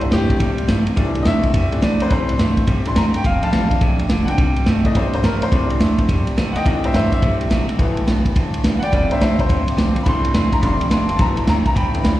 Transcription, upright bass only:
0.01 muted upright bass stroke
0.12 G2
0.30 muted upright bass stroke
0.40 A2
0.58 muted upright bass stroke
0.69 G2
0.86 muted upright bass stroke
0.97 C2
1.15 muted upright bass stroke
1.25 E2
1.44 muted upright bass stroke
1.54 F2
1.72 muted upright bass stroke
1.82 C2
2.00 G2
2.11 C2
2.28 muted upright bass stroke
2.38 G2
2.57 muted upright bass stroke
2.67 A2
2.85 muted upright bass stroke
2.96 E2
3.14 muted upright bass stroke
3.24 F1
3.42 muted upright bass stroke
3.52 A1
3.71 muted upright bass stroke
3.81 A#1
3.99 muted upright bass stroke
4.10 F1
4.27 C2
4.38 C2
4.56 muted upright bass stroke
4.66 G2
4.85 muted upright bass stroke
4.95 A2
5.13 muted upright bass stroke
5.23 G2
5.41 muted upright bass stroke
5.52 C2
5.70 muted upright bass stroke
5.80 E2
5.99 muted upright bass stroke
6.09 F2
6.27 muted upright bass stroke
6.37 C2
6.55 G2
6.66 C2
6.84 muted upright bass stroke
6.94 G2
7.12 muted upright bass stroke
7.23 A2
7.40 muted upright bass stroke
7.51 A1
7.69 muted upright bass stroke
7.79 G1
7.96 muted upright bass stroke
8.08 B1
8.25 muted upright bass stroke
8.36 C2
8.54 muted upright bass stroke
8.64 G1
8.83 D2
8.93 F1
9.11 muted upright bass stroke
9.21 C2
9.39 muted upright bass stroke
9.50 D2
9.68 muted upright bass stroke
9.77 B1
9.96 muted upright bass stroke
10.06 C2
10.24 muted upright bass stroke
10.34 E2
10.63 F1
10.81 muted upright bass stroke
10.91 F1
11.09 F1
11.19 G1
11.37 muted upright bass stroke
11.48 D2
11.66 muted upright bass stroke
11.76 E2
11.94 muted upright bass stroke
12.05 D2

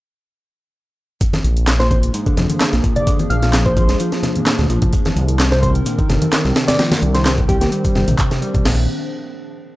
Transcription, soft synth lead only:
1.80 C5
1.91 C5
2.96 D5
3.30 F5
3.66 C5
5.52 C5
5.62 C5
6.68 D5
7.14 C5
7.25 C5
7.49 G4
7.61 G4

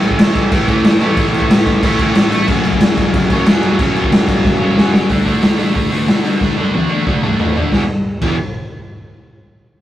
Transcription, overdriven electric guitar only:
Already playing: A2 E3 A3
0.51 A2 E3 A3
0.68 A2 E3 A3
1.01 A2 E3 A3
1.83 A2 E3 A3
1.99 A2 E3 A3
2.47 F#2 C#3 F#3
3.30 F#2 C#3 F#3
3.47 F#2 C#3 F#3
3.79 F#2 C#3 F#3
4.60 F#2 C#3 F#3
4.77 F#2 C#3 F#3
5.10 D3 A3 D4
5.26 D3 A3 D4
5.42 D3 A3 D4
5.57 D3 A3 D4
5.74 D3 A3 D4
5.91 D3 A3 D4
6.07 D3 A3 D4
6.24 D3 A3 D4
6.40 D3 A3 D4
6.57 D3 A3 D4
6.74 D3 A3 D4
6.89 D3 A3 D4
7.07 D3 A3 D4
7.23 D3 A3 D4
7.39 D3 A3 D4
7.56 D3 A3 D4
7.73 E2 B2 E3
8.21 E2 B2 E3

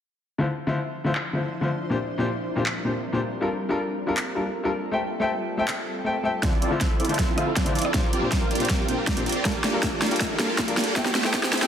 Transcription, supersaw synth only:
6.43 C4 E4 F4 A4 D5
6.62 C4 E4 F4 A4 D5
6.81 C4 E4 F4 E5
7.00 C4 E4 F4 A4 D5
7.09 C4 E4 F4 A4 D5
7.19 C4 A4
7.37 C4 E4 F4 A4 F5
7.56 D5
7.75 C4 E4 F4 A4 D5
7.85 C4 E4 F4 A4 D5
7.94 C4 F4 A#4
8.13 C4 F4 G4 A#4 D5
8.32 A#4
8.51 C4 F4 G4 A#4 D5
8.60 C4 F4 G4 A#4 D5
8.88 C4 F4 G4 A#4 G5
9.07 G4 D5
9.26 C4 F4 G4 A#4 D5
9.36 C4 F4 G4 A#4 D5
9.45 A#3 F4 D5
9.64 A#3 F4 G4 A4 D5
9.83 A#3 F4 A4
10.02 A#3 F4 G4 A4 D5
10.11 A#3 F4 G4 A4 D5
10.21 A#3 F4 A4 E5
10.39 A#3 F4 G4 A4 F5
10.59 A#3 G4 A4 D5
10.77 A#3 F4 G4 A4 D5
10.87 A#3 F4 G4 A4 D5
11.15 A3 E4 G4 C5 E5
11.34 A3 E4 C5
11.53 A3 E4 G4 C5 E5
11.62 A3 E4 G4 C5 E5

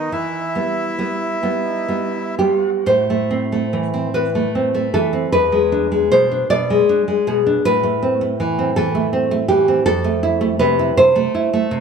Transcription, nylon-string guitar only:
0.12 E3
0.55 G3 B3
0.99 G3 B3
1.43 G3 B3
1.88 G3 B3
2.39 G3 B3 G4
2.86 A2 C5
3.10 A3
3.31 C4
3.52 A3
3.73 E3
3.94 C4
4.14 E3 B4
4.35 A3
4.55 C4
4.75 A3
4.94 E3 A4
5.13 C4
5.32 E2 B4
5.52 G#3
5.72 D4
5.92 G#3
6.12 B2 C5
6.31 D4
6.50 B2 D5
6.70 G#3
6.89 D4
7.08 G#3
7.27 B2 G#4
7.46 D4
7.65 A2 B4
7.83 A3
8.02 C4
8.21 A3
8.40 E3
8.59 C4
8.76 E3 A4
8.95 A3
9.13 C4
9.31 A3
9.48 E3 G4
9.68 C4
9.86 F2 A4
10.04 A3
10.23 E4
10.41 A3
10.59 C3 B4
10.79 E4
10.97 C3 C5
11.16 A3
11.35 E4
11.53 A3
11.71 C3

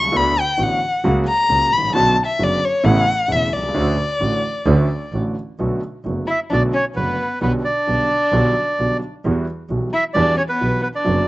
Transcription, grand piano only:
0.02 C2
0.07 C#2
0.12 D2 D3 A3 B3 F#4
0.58 A1 A2 D3 A3 B3 F#4
1.04 C#2 C#3 F#3 A#3 F#4
1.50 C#2 C#3 F#3 A#3 F#4
1.78 G#1
1.82 A1
1.90 A#1
1.94 B1 B2 D3 B3 C#4 F#4
2.39 F#1 F#2 D3 B3 C#4 F#4
2.84 A1 A2 C#3 A3 B3 E4
3.28 E1 E2 C#3 A3 B3 E4
3.56 B1
3.63 C2
3.68 C#2
3.74 D2 D3 A3 C#4 F#4
4.20 A1 A2 D3 A3 C#4 F#4
4.67 D2 D3 A3 C#4 F#4
5.14 A1 A2 D3 A3 C#4 F#4
5.59 B1 B2 D3 A3 B3 F#4
6.05 F#1 F#2 D3 A3 B3 F#4
6.52 B1 B2 D3 A3 B3 F#4
6.97 F#1 F#2 D3 A3 B3 F#4
7.41 B1 B2 D3 G3 B3 F#4
7.87 B1 B2 D3 G3 B3 F#4
8.33 B1 B2 D3 G3 B3 F#4
8.80 B1 B2 D3 G3 B3 F#4
9.25 E2 E3 G3 B3 F#4
9.69 B1 B2 E3 G3 B3 F#4
10.15 E2 E3 G3 B3 F#4
10.60 B1 B2 E3 G3 B3 F#4
11.04 F#2 D3 F#3 B3 F#4

